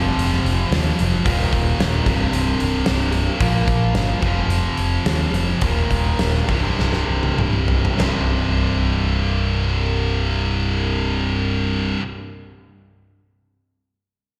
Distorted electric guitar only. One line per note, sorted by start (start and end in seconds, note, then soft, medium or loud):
0.00 1.23 F2 medium
0.00 1.24 C3 medium
0.00 1.25 F3 medium
1.26 2.04 D#2 medium
1.26 2.05 A#2 medium
1.26 2.06 D#3 medium
2.04 3.38 C2 medium
2.04 3.40 G2 medium
2.04 3.40 C3 medium
3.40 4.20 A#2 medium
3.40 4.21 F3 medium
3.40 4.22 A#3 loud
4.21 5.59 F2 medium
4.21 5.60 C3 medium
4.21 5.61 F3 medium
5.62 6.46 D#2 medium
5.62 6.48 A#2 medium
5.62 6.48 D#3 loud
6.48 7.99 C2 medium
6.48 8.00 G2 medium
6.48 8.01 C3 medium
8.00 11.98 C2 medium
8.00 12.01 G2 medium
8.00 12.02 C3 medium